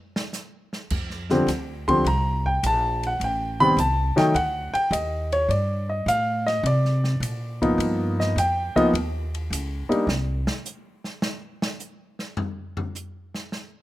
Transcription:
0.16 snare medium
0.33 snare soft
0.33 hi-hat pedal medium
0.73 snare soft
0.90 1.46 F2 medium
0.90 kick medium
0.90 crash medium
1.10 snare soft
1.30 1.47 D3 medium
1.30 1.47 F3 medium
1.30 1.47 G3 medium
1.30 1.47 C4 medium
1.30 snare soft
1.47 2.03 D2 medium
1.47 snare soft
1.47 hi-hat pedal medium
1.47 ride medium
1.88 2.04 D3 medium
1.88 2.04 F3 medium
1.88 2.04 G3 medium
1.88 2.04 C4 medium
1.88 2.05 C6 loud
1.88 kick medium
1.88 ride soft
2.05 2.61 C2 medium
2.05 2.45 A#5 medium
2.05 ride medium
2.46 2.63 G5 medium
2.46 kick soft
2.63 3.19 A#1 medium
2.63 3.03 A5 medium
2.63 hi-hat pedal medium
2.63 ride medium
3.03 3.22 F#5 medium
3.03 ride soft
3.20 3.76 A1 medium
3.20 ride medium
3.24 3.61 G5 medium
3.60 3.76 D#3 medium
3.60 3.76 G3 medium
3.60 3.76 B3 medium
3.60 3.76 C4 medium
3.60 3.78 B5 loud
3.77 4.14 C2 medium
3.77 4.17 A5 medium
3.77 hi-hat pedal medium
3.77 ride medium
4.16 4.33 D#3 medium
4.16 4.33 F#3 medium
4.16 4.33 A3 medium
4.16 4.33 D#4 medium
4.16 4.35 G5 loud
4.16 muted upright bass stroke soft
4.16 snare soft
4.16 ride soft
4.34 4.72 D2 loud
4.34 4.73 F#5 medium
4.34 ride medium
4.74 4.91 G5 loud
4.74 muted upright bass stroke soft
4.74 ride soft
4.91 5.47 D#2 loud
4.91 5.31 D#5 medium
4.91 hi-hat pedal medium
4.91 ride medium
5.32 5.50 C#5 medium
5.32 ride soft
5.49 6.05 G2 medium
5.49 5.88 D5 medium
5.49 ride medium
5.89 6.07 D#5 medium
6.06 6.62 A2 medium
6.06 6.46 F5 loud
6.06 hi-hat pedal medium
6.06 ride medium
6.46 6.64 D#5 medium
6.46 snare soft
6.46 ride soft
6.63 7.19 C3 loud
6.63 7.58 D5 medium
6.63 ride medium
6.85 snare soft
7.04 snare soft
7.20 7.76 A#2 medium
7.20 hi-hat pedal medium
7.20 ride medium
7.62 8.33 F3 medium
7.62 8.33 A#3 medium
7.62 8.33 B3 medium
7.62 8.33 D#4 medium
7.62 kick medium
7.62 ride soft
7.78 8.34 G2 medium
7.78 ride medium
8.20 8.36 D#5 medium
8.20 snare medium
8.36 8.73 F2 medium
8.36 8.76 G5 medium
8.36 hi-hat pedal soft
8.36 ride medium
8.76 8.92 F3 medium
8.76 8.92 A#3 medium
8.76 8.92 B3 medium
8.76 8.92 D#4 medium
8.76 8.87 D#5 loud
8.76 muted upright bass stroke soft
8.76 kick soft
8.76 ride soft
8.93 9.49 D#2 medium
8.93 ride medium
9.35 ride soft
9.50 9.87 C#2 medium
9.50 hi-hat pedal medium
9.50 ride medium
9.89 10.06 G3 medium
9.89 10.06 A#3 medium
9.89 10.06 D4 medium
9.89 10.06 D#4 medium
9.89 muted upright bass stroke soft
9.89 ride soft
10.07 10.46 C2 medium
10.07 snare loud
10.47 snare loud
10.66 hi-hat pedal medium
11.04 snare soft
11.22 snare loud
11.62 snare loud
11.80 hi-hat pedal medium
12.19 snare soft
12.37 floor tom loud
12.77 floor tom medium
12.95 hi-hat pedal medium
13.35 snare medium
13.52 snare medium

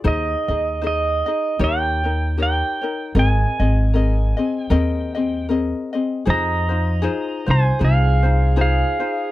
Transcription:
0.04 0.33 D#2 loud
0.04 0.49 D#4 medium
0.04 0.49 G#4 medium
0.04 0.49 C5 medium
0.04 0.47 D#5 medium
0.04 0.86 D#5 medium
0.48 1.21 D#2 medium
0.48 0.81 D#4 soft
0.48 0.82 G#4 soft
0.48 0.82 D#5 medium
0.82 1.27 D#4 medium
0.82 1.26 G#4 medium
0.82 1.27 C5 medium
0.82 1.25 D#5 medium
0.87 1.65 D#5 medium
1.26 1.58 D#4 soft
1.26 1.59 G#4 soft
1.26 1.60 D#5 soft
1.59 2.61 D#2 medium
1.59 2.04 D#4 medium
1.59 2.04 G4 medium
1.59 2.03 A#4 medium
1.59 2.03 C#5 medium
1.64 2.41 G5 medium
2.04 2.37 D#4 soft
2.04 2.37 A#4 soft
2.04 2.38 C#5 soft
2.37 2.82 D#4 medium
2.37 2.82 G4 medium
2.37 2.81 A#4 medium
2.37 2.80 C#5 medium
2.43 3.19 G5 medium
2.81 3.15 D#4 soft
2.81 3.14 A#4 soft
2.81 3.15 C#5 soft
3.15 3.44 G#1 loud
3.15 3.60 C4 medium
3.15 3.60 G#4 medium
3.15 3.60 A#4 medium
3.15 3.58 D#5 medium
3.19 4.62 G#5 medium
3.59 4.32 G#1 medium
3.59 3.93 C4 soft
3.59 3.94 G#4 soft
3.59 3.94 D#5 medium
3.94 4.37 C4 medium
3.94 4.37 G#4 medium
3.94 4.38 A#4 medium
3.94 4.36 D#5 medium
4.37 4.69 C4 soft
4.37 4.70 G#4 soft
4.37 4.70 D#5 soft
4.62 5.47 G5 medium
4.70 5.71 D#2 medium
4.70 5.15 C4 medium
4.70 5.15 G#4 medium
4.70 5.15 A#4 medium
4.70 5.13 D#5 medium
5.15 5.48 C4 soft
5.15 5.49 G#4 medium
5.15 5.49 D#5 medium
5.49 5.93 C4 medium
5.49 5.93 G#4 medium
5.49 5.93 A#4 medium
5.49 5.92 D#5 medium
5.93 6.26 C4 soft
5.93 6.24 G#4 soft
5.93 6.26 D#5 medium
6.25 7.06 F2 medium
6.25 6.70 D#4 medium
6.25 6.69 F4 medium
6.25 6.70 G#4 medium
6.25 6.68 C5 medium
6.30 7.46 D#5 medium
6.30 7.53 A#5 medium
6.69 7.02 D#4 soft
6.69 7.02 F4 soft
6.69 7.03 C5 medium
7.02 7.48 D#4 medium
7.02 7.47 F4 medium
7.02 7.47 G#4 medium
7.02 7.45 C5 medium
7.46 7.70 C2 medium
7.46 7.79 D#4 soft
7.46 7.79 F4 medium
7.46 7.80 C5 medium
7.51 7.84 G#5 medium
7.79 8.82 C2 medium
7.79 8.24 D#4 medium
7.79 8.23 F4 medium
7.79 8.24 G#4 medium
7.79 8.22 C5 medium
7.84 8.56 G#4 medium
7.84 8.60 F5 medium
8.23 8.56 D#4 soft
8.23 8.56 F4 soft
8.23 8.56 C5 medium
8.56 9.00 D#4 medium
8.56 8.99 F4 medium
8.56 9.02 G#4 medium
8.56 8.99 C5 medium
8.61 9.32 G#4 medium
8.61 9.32 F5 medium
9.00 9.32 D#4 soft
9.00 9.32 F4 soft
9.00 9.32 C5 soft

